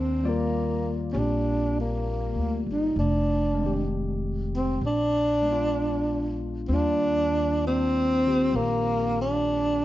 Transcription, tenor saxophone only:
0.00 0.30 C4 medium
0.28 1.01 A#3 medium
1.12 1.20 C#4 soft
1.19 1.79 D4 medium
1.81 2.66 A#3 medium
2.72 2.97 D#4 medium
2.99 3.86 D4 medium
4.56 4.81 C4 medium
4.86 6.38 D4 medium
6.68 6.76 C4 soft
6.75 7.64 D4 medium
7.67 8.57 C4 medium
8.56 9.17 A#3 medium
9.22 9.85 D4 medium

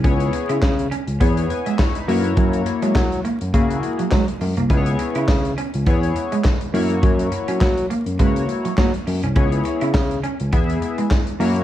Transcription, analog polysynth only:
0.04 0.53 B3 medium
0.04 0.53 E4 medium
0.04 0.53 G#4 medium
0.04 0.54 C#5 loud
1.20 1.70 B3 medium
1.20 1.50 E4 medium
1.20 1.50 G#4 medium
1.20 1.50 C#5 medium
1.50 1.66 B4 medium
1.50 1.65 G#5 medium
1.66 1.78 G#4 medium
1.66 1.78 E5 medium
1.79 1.95 E4 medium
1.79 1.94 C#5 medium
1.95 2.23 D#4 medium
1.95 2.23 B4 medium
2.07 3.02 A#3 medium
2.07 3.02 E4 medium
2.07 3.02 F#4 medium
2.07 3.02 C#5 loud
3.53 4.03 A#3 medium
3.53 4.03 E4 medium
3.53 4.03 F#4 medium
3.53 4.03 G#4 medium
4.70 5.19 B3 medium
4.70 5.19 E4 medium
4.70 5.19 G#4 medium
4.70 4.78 B4 medium
4.77 5.23 C#5 loud
5.86 6.36 B3 medium
5.86 6.36 E4 medium
5.86 6.36 G#4 medium
5.86 6.36 C#5 loud
6.74 7.68 A#3 medium
6.74 7.68 E4 medium
6.74 7.68 F#4 medium
6.74 7.68 C#5 loud
8.19 8.69 A#3 medium
8.19 8.69 E4 medium
8.19 8.69 F#4 medium
8.19 8.27 B4 medium
8.26 8.72 C#5 medium
9.36 9.85 B3 medium
9.36 9.85 E4 medium
9.36 9.85 G#4 medium
9.36 9.86 C#5 medium
10.52 11.02 B3 medium
10.52 11.02 E4 medium
10.52 11.02 G#4 medium
10.52 11.02 E5 medium
11.40 11.64 A#3 loud
11.40 11.64 E4 medium
11.40 11.64 F#4 medium
11.40 11.64 C#5 loud

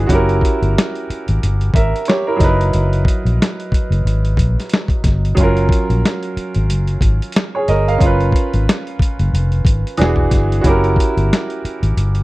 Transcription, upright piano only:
0.00 0.12 E3 medium
0.00 0.12 D4 medium
0.00 0.06 F#4 medium
0.00 0.11 G#4 medium
0.06 2.36 C#4 medium
0.06 1.71 E4 medium
0.06 2.35 F#4 medium
0.12 1.72 G4 medium
0.12 1.73 A#4 medium
1.75 2.06 A#4 medium
1.75 2.06 E5 medium
2.08 2.26 G4 medium
2.08 2.26 C#5 medium
2.27 2.58 E4 medium
2.27 2.40 A#4 medium
2.36 4.98 F#3 medium
2.36 5.00 D#4 medium
2.42 5.01 A#4 medium
2.42 5.02 B4 medium
5.35 7.96 F#3 medium
5.35 7.96 C#4 medium
5.40 7.98 F4 medium
5.40 7.34 A#4 medium
7.55 7.68 G#4 medium
7.55 7.68 C#5 medium
7.69 7.87 A#4 medium
7.69 7.86 D#5 medium
7.88 8.19 A#4 soft
7.88 8.19 F5 medium
7.98 9.93 C#4 medium
8.02 9.95 F4 medium
8.02 9.97 B4 medium
9.98 10.64 E3 medium
9.98 10.65 D4 medium
9.98 10.60 F#4 medium
9.98 10.66 G#4 medium
10.61 12.23 C#4 medium
10.61 12.23 E4 medium
10.61 12.23 F#4 medium
10.67 12.23 G4 medium
10.67 12.23 A#4 medium

